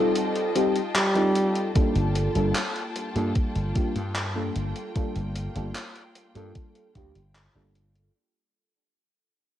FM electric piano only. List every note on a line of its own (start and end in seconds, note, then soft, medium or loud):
0.00 0.50 G3 medium
0.00 0.51 C4 medium
0.00 0.51 D#4 medium
0.00 0.51 F4 medium
0.00 0.51 A4 loud
0.55 0.79 G3 medium
0.55 0.79 C4 medium
0.55 0.79 D#4 medium
0.55 0.79 F4 medium
0.55 0.80 G4 loud
1.15 1.70 G3 medium
1.15 1.71 C4 medium
1.15 1.71 D#4 medium
1.15 1.71 F4 medium
1.15 1.71 A4 medium
1.75 2.30 G3 medium
1.75 2.31 A#3 medium
1.75 2.31 D4 medium
1.75 2.31 F4 medium
1.75 2.31 A4 loud
2.35 2.59 G3 medium
2.35 2.59 A#3 medium
2.35 2.59 D4 medium
2.35 2.59 F4 medium
2.35 2.60 A4 medium
3.15 3.71 G3 medium
3.15 3.71 A#3 medium
3.15 3.71 D4 medium
3.15 3.71 F4 medium
3.15 3.71 A4 medium
3.75 3.99 G3 medium
3.75 3.99 A#3 medium
3.75 3.99 D4 medium
3.75 3.99 F4 medium
3.75 4.00 G4 medium
4.35 4.91 G3 medium
4.35 4.91 A#3 medium
4.35 4.91 D4 medium
4.35 4.91 F4 medium
4.35 4.91 A4 medium
4.95 5.51 G3 medium
4.95 5.51 A#3 medium
4.95 5.51 D4 medium
4.95 5.51 F4 medium
4.95 5.51 A4 loud
5.55 5.79 G3 medium
5.55 5.79 A#3 medium
5.55 5.79 D4 medium
5.55 5.79 F4 medium
5.55 5.80 A4 medium
6.35 6.91 G3 medium
6.35 6.91 A#3 medium
6.35 6.91 D4 medium
6.35 6.91 F4 medium
6.35 6.91 A4 medium
6.95 7.19 G3 medium
6.95 7.19 A#3 medium
6.95 7.19 D4 medium
6.95 7.19 F4 medium
6.95 7.20 G4 medium
7.55 8.10 G3 medium
7.55 8.11 A#3 medium
7.55 8.11 D4 medium
7.55 8.11 F4 medium
7.55 8.11 A4 medium